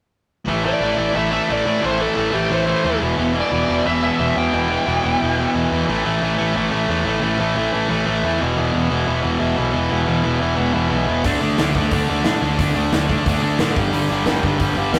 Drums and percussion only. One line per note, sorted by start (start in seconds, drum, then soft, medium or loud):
11.24 kick loud
11.24 open hi-hat medium
11.58 snare loud
11.58 open hi-hat medium
11.75 kick medium
11.91 kick loud
11.91 open hi-hat medium
12.24 snare loud
12.24 open hi-hat medium
12.59 kick loud
12.59 open hi-hat medium
12.93 snare loud
12.93 open hi-hat medium
13.09 kick medium
13.26 kick loud
13.26 open hi-hat medium
13.59 snare loud
13.59 open hi-hat medium
13.76 kick loud
13.93 open hi-hat medium
14.26 snare loud
14.26 open hi-hat medium
14.43 kick medium
14.59 kick loud
14.59 open hi-hat medium
14.94 snare loud
14.94 open hi-hat medium